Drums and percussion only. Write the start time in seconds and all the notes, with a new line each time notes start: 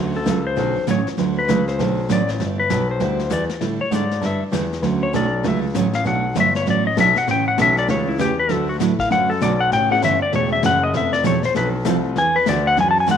0.26 snare, hi-hat pedal
0.57 brush sweep, snare
0.87 snare, hi-hat pedal
1.07 snare
1.18 brush sweep, snare
1.49 snare, hi-hat pedal
1.68 snare
1.79 brush sweep, snare
2.09 snare, hi-hat pedal
2.29 snare
2.40 brush sweep, snare
2.70 snare, hi-hat pedal
3.00 brush sweep, snare
3.19 snare
3.30 snare, hi-hat pedal
3.49 snare
3.61 brush sweep, snare
3.92 snare, hi-hat pedal
4.11 snare
4.23 brush sweep, snare
4.53 snare, hi-hat pedal
4.73 snare
4.83 brush sweep, snare
5.14 snare, hi-hat pedal
5.44 brush sweep, snare
5.75 snare, hi-hat pedal
5.93 snare
6.06 brush sweep, snare
6.35 snare, hi-hat pedal
6.55 snare
6.66 brush sweep, snare
6.97 snare, hi-hat pedal
7.16 snare
7.27 brush sweep, snare
7.58 snare, hi-hat pedal
7.77 snare
7.88 brush sweep, snare
8.19 snare, hi-hat pedal
8.49 brush sweep, snare
8.80 snare, hi-hat pedal
8.99 kick, snare
9.11 brush sweep, snare
9.41 snare, hi-hat pedal
9.72 brush sweep, snare
10.02 snare, hi-hat pedal
10.33 brush sweep, snare
10.63 snare, hi-hat pedal
10.94 brush sweep, snare
11.13 snare
11.24 snare, hi-hat pedal
11.43 snare
11.55 brush sweep, snare
11.85 snare, hi-hat pedal
12.16 brush sweep, snare
12.46 snare, hi-hat pedal
12.77 brush sweep, snare
13.07 snare, hi-hat pedal